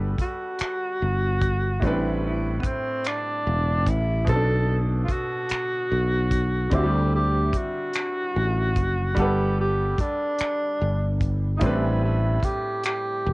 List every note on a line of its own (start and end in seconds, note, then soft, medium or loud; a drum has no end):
0.00 0.15 G1 medium
0.00 1.77 G3 medium
0.00 1.78 F#4 medium
0.00 1.79 A4 medium
0.00 1.80 B4 medium
0.18 1.87 F#4 loud
0.18 muted fretless electric bass stroke soft
0.18 kick medium
0.18 closed hi-hat medium
0.59 finger snap medium
0.59 muted fretless electric bass stroke soft
0.59 closed hi-hat medium
1.02 1.79 G1 medium
1.41 kick medium
1.41 closed hi-hat medium
1.80 2.60 A1 medium
1.80 4.22 A2 medium
1.80 4.23 G3 medium
1.80 4.23 C4 medium
1.80 kick loud
1.80 closed hi-hat medium
1.85 4.24 D4 medium
1.85 2.25 E4 medium
1.85 4.25 B4 medium
2.26 2.61 E4 medium
2.60 2.68 B3 medium
2.64 3.09 C4 medium
2.64 muted fretless electric bass stroke soft
2.64 kick medium
2.64 closed hi-hat medium
3.04 3.91 D4 loud
3.04 finger snap medium
3.04 closed hi-hat medium
3.47 3.87 E1 medium
3.86 4.23 A1 medium
3.86 4.28 E4 medium
3.86 kick medium
3.86 closed hi-hat medium
4.25 5.05 B1 medium
4.25 6.67 B2 medium
4.25 6.68 B3 medium
4.25 kick loud
4.25 closed hi-hat medium
4.29 4.35 C4 soft
4.29 4.79 A4 loud
4.29 6.70 A4 medium
4.36 6.72 D4 medium
5.05 5.13 F4 medium
5.05 kick medium
5.09 6.76 F#4 loud
5.09 muted fretless electric bass stroke soft
5.09 closed hi-hat medium
5.49 finger snap medium
5.49 muted fretless electric bass stroke soft
5.49 closed hi-hat medium
5.92 6.68 B1 medium
6.31 kick medium
6.31 closed hi-hat medium
6.70 7.50 D2 medium
6.70 9.12 D3 medium
6.70 9.13 C4 medium
6.70 kick loud
6.70 closed hi-hat medium
6.75 9.14 E4 medium
6.75 6.81 F#4 medium
6.75 7.14 G4 medium
6.84 9.13 G3 medium
7.15 7.59 G4 medium
7.53 muted fretless electric bass stroke soft
7.53 kick medium
7.53 closed hi-hat medium
7.57 9.21 F#4 medium
7.93 finger snap medium
7.93 closed hi-hat medium
8.36 8.77 A1 medium
8.76 9.13 F#1 medium
8.76 kick medium
8.76 closed hi-hat medium
9.15 9.95 G1 medium
9.15 11.56 G3 medium
9.15 11.58 F#5 medium
9.15 kick medium
9.15 closed hi-hat medium
9.19 9.59 G4 medium
9.19 11.59 A4 medium
9.19 11.60 B4 medium
9.61 10.02 G4 medium
9.98 11.36 D4 medium
9.98 muted fretless electric bass stroke soft
9.98 kick medium
9.98 closed hi-hat medium
10.38 finger snap medium
10.38 muted fretless electric bass stroke soft
10.38 closed hi-hat medium
10.81 11.58 G1 medium
11.21 kick medium
11.21 closed hi-hat medium
11.57 13.33 A2 medium
11.57 13.33 G3 medium
11.57 11.65 D#4 medium
11.57 closed hi-hat medium
11.61 12.39 A1 medium
11.61 13.33 C4 medium
11.61 13.33 D4 soft
11.61 12.03 E4 medium
11.61 kick loud
11.66 13.33 B4 medium
12.05 12.46 E4 medium
12.43 12.85 G4 medium
12.43 muted fretless electric bass stroke soft
12.43 kick medium
12.43 closed hi-hat medium
12.84 13.33 G4 loud
12.84 finger snap medium
12.84 closed hi-hat medium
13.27 13.33 E1 medium